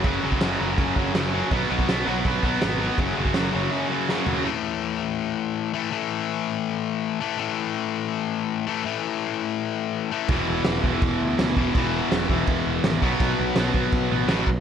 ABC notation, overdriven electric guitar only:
X:1
M:4/4
L:1/8
Q:1/4=164
K:A
V:1 name="Overdriven electric guitar" clef=bass
[F,,C,F,] [F,,C,F,] [F,,C,F,] [F,,C,F,] [F,,C,F,] [F,,C,F,] [F,,C,F,] [F,,C,F,] | [B,,F,B,] [B,,F,B,] [B,,F,B,] [B,,F,B,] [B,,F,B,] [B,,F,B,] [B,,F,B,] [B,,F,B,] | [F,,C,F,] [F,,C,F,] [F,,C,F,] [F,,C,F,] [F,,C,F,] [F,,C,F,] [F,,C,F,] [F,,C,F,] | [A,,E,A,]6- [A,,E,A,] [A,,E,A,] |
[A,,E,A,]6- [A,,E,A,] [A,,E,A,] | [A,,E,A,]6- [A,,E,A,] [A,,E,A,] | [A,,E,A,]6- [A,,E,A,] [A,,E,A,] | [E,,B,,E,]6- [E,,B,,E,] [E,,B,,E,] |
[E,,B,,E,]6- [E,,B,,E,] [B,,F,B,]- | [B,,F,B,]6 [B,,F,B,] z |]